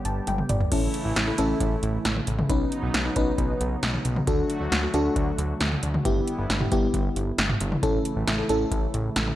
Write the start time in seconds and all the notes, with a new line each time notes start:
Already playing: D3 G3 B3 G4
0.05 G1 A5, closed hi-hat
0.27 G1 G5, closed hi-hat, high tom
0.38 mid tom
0.49 G1 D5, closed hi-hat, mid tom
0.61 floor tom
0.72 A1 C#3 E3 A3 C#4 E4 A4, kick, closed hi-hat, crash
0.94 closed hi-hat
1.05 A1
1.16 A1, snare, closed hi-hat
1.27 E4 A4
1.38 A1 C#4 E4 A4, closed hi-hat
1.60 A1, kick, closed hi-hat
1.83 A1, closed hi-hat
2.05 A1, snare, closed hi-hat
2.16 mid tom
2.27 A1, closed hi-hat
2.39 mid tom
2.50 B1 F#3 B3 C#4 D#4 B4, kick, closed hi-hat
2.72 closed hi-hat
2.83 B1
2.94 B1, snare, closed hi-hat
3.05 D#4 B4
3.16 B1 C#4 D#4 B4, kick, closed hi-hat
3.38 B1, kick, closed hi-hat
3.61 B1, closed hi-hat
3.83 B1, snare, closed hi-hat
3.94 mid tom
4.05 B1, closed hi-hat
4.16 mid tom
4.27 D2 D3 F#3 A3 D4 F#4 A4, kick, closed hi-hat
4.50 closed hi-hat
4.61 D2
4.72 D2, snare, closed hi-hat
4.83 F#4 A4
4.94 D2 D4 F#4 A4, closed hi-hat
5.16 D2, kick, closed hi-hat
5.38 D2, closed hi-hat
5.61 D2, snare, closed hi-hat
5.72 mid tom
5.83 D2, closed hi-hat
5.94 mid tom
6.05 G1 G3 B3 E4 G4, kick, closed hi-hat
6.28 closed hi-hat
6.38 G1
6.50 G1, snare, closed hi-hat
6.61 E4 G4, mid tom
6.72 G1 B3 E4 G4, kick, closed hi-hat
6.94 G1, kick, closed hi-hat
7.16 G1, closed hi-hat
7.38 G1, snare, closed hi-hat
7.50 mid tom
7.61 G1, closed hi-hat
7.72 mid tom
7.83 A1 C#3 E3 A3 C#4 E4 A4, kick, closed hi-hat
8.05 closed hi-hat
8.16 A1
8.27 A1, snare, closed hi-hat
8.38 E4 A4
8.49 A1 C#4 E4 A4, closed hi-hat
8.72 A1, kick, closed hi-hat
8.94 A1, closed hi-hat
9.16 A1, snare, closed hi-hat
9.27 mid tom